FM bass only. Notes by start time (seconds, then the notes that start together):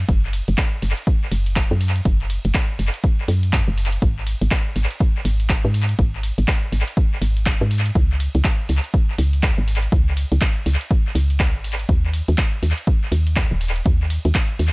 0.09 F#1
0.48 F#1
0.83 F#1
1.32 F#1
1.71 F#2
2.05 F#1
2.45 F#1
2.79 F#1
3.28 F#2
3.68 F#1
4.02 G#1
4.41 G#1
4.76 G#1
5.25 G#1
5.65 G#2
5.99 G#1
6.38 G#1
6.72 G#1
7.22 G#1
7.61 G#2
7.95 C#2
8.35 C#2
8.69 C#2
9.19 C#2
9.58 G#1
9.92 C#2
10.32 C#2
10.66 C#2
11.15 C#2
11.55 G#1
11.89 D#2
12.28 D#2
12.63 D#2
13.12 D#2
13.51 D#1
13.86 D#2
14.25 D#2
14.59 D#2